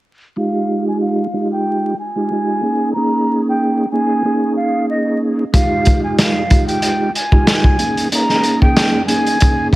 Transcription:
0.36 tonewheel organ G#3 D#4 F4 G4, flute F5
0.88 flute G#5
1.01 flute F5
1.33 tonewheel organ G#3 D#4 F4 G4
1.52 flute G5
1.99 flute G#5
2.15 tonewheel organ G#3 D#4 F4 G4
2.31 tonewheel organ G#3 D#4 F4 G4
2.62 tonewheel organ A#3 C#4 D#4 G#4
2.93 tonewheel organ A#3 C#4 D#4 G#4, flute A#5
3.49 flute G5
3.91 tonewheel organ A#3 C#4 D#4 G#4, flute G#5
4.25 tonewheel organ A#3 C#4 D#4 G#4
4.56 flute F5
4.90 flute D#5
5.53 tonewheel organ G#3 D#4 F4 G4, flute F5, kick, closed hi-hat
5.85 kick, closed hi-hat
6.04 flute G#5
6.18 flute F5, snare, closed hi-hat
6.50 tonewheel organ G#3 D#4 F4 G4, kick, closed hi-hat
6.67 flute G5, closed hi-hat
6.82 closed hi-hat
7.15 flute G#5, closed hi-hat
7.32 tonewheel organ G#3 D#4 F4 G4, kick
7.47 tonewheel organ G#3 D#4 F4 G4, snare, closed hi-hat
7.64 kick
7.78 tonewheel organ A#3 C#4 D#4 G#4, closed hi-hat
7.97 closed hi-hat
8.11 tonewheel organ A#3 C#4 D#4 G#4, flute A#5, closed hi-hat
8.29 snare
8.43 closed hi-hat
8.62 flute G5, kick
8.77 snare, closed hi-hat
9.06 tonewheel organ A#3 C#4 D#4 G#4, flute G#5, closed hi-hat
9.26 closed hi-hat
9.40 tonewheel organ A#3 C#4 D#4 G#4, kick, closed hi-hat

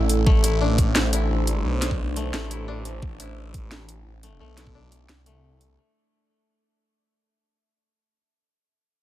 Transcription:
Already playing: detuned saw bass A1, koto A3 D4 E4, analog synth pad A3 E4 A4
0.09 closed hi-hat
0.26 detuned saw bass A1, koto A3, analog synth pad D4 C5, kick
0.44 koto E4, closed hi-hat
0.61 koto D4
0.78 kick, closed hi-hat
0.95 detuned saw bass A1, snare, closed hi-hat
1.13 koto E4, closed hi-hat
1.30 detuned saw bass A1
1.47 closed hi-hat
1.65 detuned saw bass B1
1.82 snare, closed hi-hat
1.91 kick
2.16 koto A3, closed hi-hat
2.34 detuned saw bass A1, koto A3, snare, closed hi-hat
2.51 koto E4, closed hi-hat
2.68 detuned saw bass A1, koto D4
2.85 closed hi-hat
3.02 detuned saw bass A1, kick
3.20 koto E4, closed hi-hat
3.54 kick, closed hi-hat
3.71 detuned saw bass A1, snare, closed hi-hat
3.89 closed hi-hat
4.06 detuned saw bass A1
4.23 koto A3, closed hi-hat
4.40 detuned saw bass B1, koto A3
4.57 koto E4, snare, closed hi-hat
4.67 kick
4.75 koto D4
4.92 closed hi-hat
5.09 detuned saw bass C2, snare, closed hi-hat
5.26 koto A3, closed hi-hat
5.61 closed hi-hat

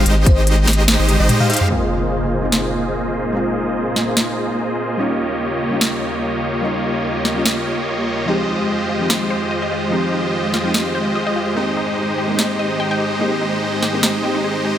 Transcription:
0.06 sub bass G#1, supersaw synth G#3 D#4 G4 C5 D#5, closed hi-hat
0.26 fm electric piano C5, kick, closed hi-hat
0.47 closed hi-hat
0.68 snare, open hi-hat
0.73 closed hi-hat
0.88 snare, closed hi-hat
0.99 sub bass G#1, supersaw synth G#3 D#4 G4 C5 D#5
1.09 closed hi-hat, high tom
1.20 sub bass G#1, supersaw synth G#3 D#4 G4 C5 D#5, fm electric piano D#5
1.29 closed hi-hat, mid tom
1.40 fm electric piano F5, mid tom
1.50 supersaw synth G#3 D#4 G4 C5 F5, fm electric piano F5, closed hi-hat
1.53 closed hi-hat
1.57 closed hi-hat
1.61 mid tom
1.68 analog synth pad A#2 G#3 C4 D#4, synth pluck G#3 A#3 C4 D#4, supersaw synth A#3 F4 G#4 C5 D#5, impact
1.72 synth pluck F4
2.41 synth pluck G#3 A#3 C4 D#4
2.45 synth pluck F4
2.52 snare
3.33 synth pluck G#3 A#3 C4 D#4 F4
3.96 snare
4.05 synth pluck G#3 A#3 C4 D#4
4.09 synth pluck F4
4.17 snare
4.97 analog synth pad D#2 C#3 G3 F4, synth pluck G3 A#3 C#4 D#4, supersaw synth A#3 F4 G4 C#5 D#5
5.01 synth pluck F4
5.70 synth pluck G3 A#3 C#4 D#4
5.74 synth pluck F4
5.81 snare
6.61 synth pluck G3 A#3 C#4 D#4
6.65 synth pluck F4
7.25 snare
7.34 synth pluck G3 A#3 C#4 D#4
7.38 synth pluck F4
7.46 snare
8.26 analog synth pad F2 D#3 G#3 G4, synth pluck F3 G#3 C4 D#4, supersaw synth G#3 F4 G4 C5 D#5, synth arpeggio sound D#4
8.30 synth pluck G4
8.48 synth arpeggio sound D#4
8.89 synth arpeggio sound F4
8.99 synth pluck F3 G#3 C4 D#4 G4
9.10 synth arpeggio sound D#4, snare
9.30 synth arpeggio sound C5
9.51 synth arpeggio sound D#5
9.62 synth arpeggio sound D#5
9.71 synth arpeggio sound F4
9.90 synth pluck F3 G#3 C4 D#4 G4, synth arpeggio sound D#4
10.13 synth arpeggio sound D#4
10.54 synth arpeggio sound F4, snare
10.63 synth pluck F3 G#3 C4 D#4
10.67 synth pluck G4
10.74 synth arpeggio sound D#4, snare
10.95 synth arpeggio sound C5
11.15 synth arpeggio sound D#5
11.27 synth arpeggio sound D#5
11.36 synth arpeggio sound F4
11.54 analog synth pad G#2 D#3 C4, synth pluck G#3 A#3 C4 D#4, supersaw synth G#3 D#4 G4 C5 D#5, synth arpeggio sound D#4
11.59 synth pluck G4
11.77 synth arpeggio sound D#4
12.18 synth arpeggio sound G4
12.27 synth pluck G#3 A#3 C4 D#4 G4
12.39 synth arpeggio sound D#4, snare
12.59 synth arpeggio sound D#5
12.80 synth arpeggio sound G5
12.91 synth arpeggio sound G5
13.00 synth arpeggio sound G4
13.19 synth pluck G#3 A#3 C4 D#4 G4, synth arpeggio sound D#4
13.41 synth arpeggio sound D#4
13.83 synth arpeggio sound G4, snare
13.93 synth pluck G#3 A#3 C4 D#4 G4
14.03 synth arpeggio sound D#4, snare
14.22 synth pluck G#3 A#3 C4 D#4 G4, synth arpeggio sound G5
14.35 synth arpeggio sound D#4
14.44 synth arpeggio sound G#4
14.65 synth arpeggio sound G4

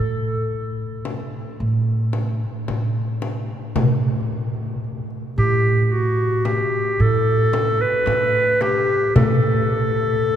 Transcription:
Already playing: upright bass A2, clarinet A4
1.05 frame drum
1.60 upright bass A2
2.13 frame drum
2.68 upright bass A2, frame drum
3.22 frame drum
3.76 upright bass A2, frame drum, darbuka dum
4.84 darbuka ka
5.10 darbuka ka
5.38 upright bass A2, clarinet G4
5.85 clarinet G4
5.92 clarinet F#4
6.45 clarinet G4, darbuka tek, frame drum
7.00 upright bass A2, clarinet A4
7.53 darbuka tek, frame drum
7.81 clarinet B4
8.06 upright bass A2, darbuka tek, frame drum
8.61 clarinet G4, darbuka tek, frame drum
9.15 upright bass A2, clarinet A4, darbuka dum, frame drum
10.23 darbuka ka

